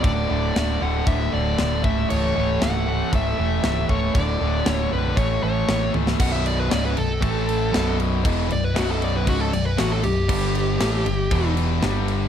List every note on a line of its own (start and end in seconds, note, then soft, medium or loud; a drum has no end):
0.03 0.24 D1 loud
0.03 0.28 D2 medium
0.03 0.28 A2 loud
0.03 0.29 D3 loud
0.03 0.83 D5 loud
0.03 kick loud
0.03 crash medium
0.29 0.50 D1 medium
0.29 0.54 D2 medium
0.29 0.54 A2 medium
0.29 0.54 D3 loud
0.55 0.76 D1 loud
0.55 0.80 D2 medium
0.55 0.80 A2 loud
0.55 0.81 D3 loud
0.55 snare loud
0.55 crash medium
0.81 1.01 D1 medium
0.81 1.05 D2 medium
0.81 1.06 A2 medium
0.81 1.07 D3 medium
0.81 1.06 F#5 loud
1.07 1.27 D1 loud
1.07 1.31 D2 medium
1.07 1.32 A2 loud
1.07 1.32 D3 medium
1.07 1.33 E5 medium
1.07 kick loud
1.07 crash medium
1.32 1.54 D1 medium
1.32 1.57 D2 medium
1.32 1.57 A2 medium
1.32 1.58 D3 medium
1.32 1.84 D5 medium
1.58 1.85 D1 medium
1.58 1.82 D2 loud
1.58 1.81 A2 loud
1.58 1.83 D3 loud
1.58 snare loud
1.58 crash medium
1.83 2.04 C#1 loud
1.83 2.08 A2 medium
1.83 2.09 E3 loud
1.83 2.10 A3 loud
1.83 2.09 E5 medium
1.83 kick loud
2.09 2.31 C#1 loud
2.09 2.34 A2 loud
2.09 2.35 E3 medium
2.09 2.36 A3 loud
2.09 2.63 C#5 loud
2.09 crash medium
2.35 2.56 C#1 medium
2.35 2.59 A2 medium
2.35 2.60 E3 loud
2.35 2.61 A3 loud
2.60 3.01 C#1 loud
2.60 2.85 A2 medium
2.60 2.86 E3 loud
2.60 2.88 A3 loud
2.60 3.10 F#5 loud
2.60 snare loud
2.60 crash medium
2.87 3.10 A2 medium
2.87 3.11 E3 medium
2.87 3.12 A3 loud
3.12 3.33 C#1 loud
3.12 3.37 A2 medium
3.12 3.37 E3 loud
3.12 3.37 A3 medium
3.12 3.90 E5 medium
3.12 kick loud
3.12 crash medium
3.38 3.58 E1 medium
3.38 3.62 A2 medium
3.38 3.62 E3 medium
3.38 3.63 A3 loud
3.63 3.84 C#1 medium
3.63 3.88 A2 loud
3.63 3.88 E3 loud
3.63 3.88 A3 loud
3.63 snare loud
3.63 crash medium
3.89 4.09 C#1 loud
3.89 4.13 A2 medium
3.89 4.13 E3 medium
3.89 4.14 A3 loud
3.89 4.14 C#5 medium
3.89 kick medium
4.14 4.35 D1 medium
4.14 4.39 D2 loud
4.14 4.40 A2 loud
4.14 4.40 D3 loud
4.14 4.69 D5 medium
4.14 kick loud
4.14 crash medium
4.40 4.61 D1 medium
4.40 4.65 D2 medium
4.40 4.65 A2 medium
4.40 4.66 D3 loud
4.66 4.86 D1 loud
4.66 4.90 D2 loud
4.66 4.91 A2 loud
4.66 4.91 D3 loud
4.66 4.92 C#5 medium
4.66 snare loud
4.66 crash medium
4.91 5.12 B0 medium
4.91 5.16 D2 medium
4.91 5.16 A2 medium
4.91 5.16 D3 medium
4.91 5.17 B4 medium
5.17 5.37 A1 medium
5.17 5.41 A2 medium
5.17 5.42 E3 loud
5.17 5.43 A3 loud
5.17 5.42 C#5 medium
5.17 kick loud
5.17 crash medium
5.43 5.63 A1 medium
5.43 5.67 A2 loud
5.43 5.68 E3 medium
5.43 5.68 A3 medium
5.43 5.91 C#5 medium
5.68 5.88 A1 medium
5.68 5.93 A2 loud
5.68 5.93 E3 loud
5.68 5.94 A3 loud
5.68 snare loud
5.68 crash medium
5.94 6.14 C#1 medium
5.94 6.18 A2 medium
5.94 6.19 E3 medium
5.94 6.19 A3 medium
5.94 high tom medium
6.07 snare loud
6.20 6.68 B0 loud
6.20 6.70 B1 loud
6.20 6.71 F#2 loud
6.20 6.71 B2 loud
6.20 6.33 F#5 loud
6.20 kick loud
6.20 crash loud
6.33 6.45 E5 medium
6.46 6.60 D5 medium
6.46 crash medium
6.60 6.71 B4 medium
6.71 6.95 C#1 medium
6.71 6.96 C#2 loud
6.71 6.96 G#2 loud
6.71 6.97 C#3 loud
6.71 6.84 D5 medium
6.71 snare loud
6.71 crash medium
6.86 6.97 B4 medium
6.97 7.21 B0 medium
6.97 7.17 B1 medium
6.97 7.17 F#2 medium
6.97 7.96 A4 medium
6.97 crash medium
7.21 7.70 A1 medium
7.21 7.72 A2 medium
7.21 7.72 E3 loud
7.21 7.73 A3 loud
7.21 kick loud
7.21 crash medium
7.49 crash medium
7.72 8.22 B0 medium
7.72 8.23 B1 loud
7.72 8.23 F#2 loud
7.72 8.24 B2 loud
7.72 snare loud
7.72 crash medium
8.00 crash medium
8.24 8.49 E1 loud
8.24 8.49 E2 medium
8.24 8.49 B2 loud
8.24 8.50 E3 loud
8.24 kick loud
8.24 crash medium
8.49 8.75 B0 medium
8.49 8.70 B1 medium
8.49 8.70 F#2 medium
8.49 8.64 D5 medium
8.49 crash medium
8.64 8.76 B4 medium
8.74 9.24 B0 loud
8.74 9.25 B1 loud
8.74 9.26 F#2 loud
8.74 9.26 B2 loud
8.74 snare loud
8.74 crash medium
8.79 8.90 F#4 medium
8.91 9.02 A4 medium
9.02 9.15 D5 medium
9.02 crash medium
9.17 9.28 B4 medium
9.26 9.51 C#1 loud
9.26 9.51 C#2 medium
9.26 9.51 G#2 loud
9.26 9.52 C#3 medium
9.26 9.40 F#4 medium
9.26 kick loud
9.26 crash medium
9.40 9.53 A4 medium
9.52 9.77 B0 medium
9.52 9.72 B1 medium
9.52 9.73 F#2 medium
9.52 9.65 D5 loud
9.52 crash medium
9.66 9.78 B4 medium
9.77 10.02 A1 medium
9.77 10.03 A2 loud
9.77 10.03 E3 loud
9.77 10.03 A3 loud
9.77 9.91 F#4 medium
9.77 snare loud
9.77 crash medium
9.93 10.04 A4 loud
10.03 10.28 B0 medium
10.03 10.24 B1 medium
10.03 10.24 F#2 medium
10.03 11.53 G4 loud
10.03 crash medium
10.28 10.77 G1 loud
10.28 10.79 G2 loud
10.28 10.79 D3 loud
10.28 10.79 G3 loud
10.28 kick loud
10.28 crash loud
10.55 crash medium
10.79 11.05 A1 loud
10.79 11.05 A2 medium
10.79 11.05 E3 loud
10.79 11.05 A3 loud
10.79 snare loud
10.79 crash medium
11.05 11.30 G1 medium
11.05 11.26 G2 medium
11.05 11.27 D3 medium
11.05 crash medium
11.31 11.79 E1 loud
11.31 11.82 E2 loud
11.31 11.82 B2 medium
11.31 11.82 E3 loud
11.31 kick loud
11.31 crash medium
11.57 crash medium
11.82 12.28 G1 loud
11.82 12.28 G2 loud
11.82 12.28 D3 loud
11.82 12.28 G3 loud
11.82 snare medium
11.82 crash medium
12.08 crash medium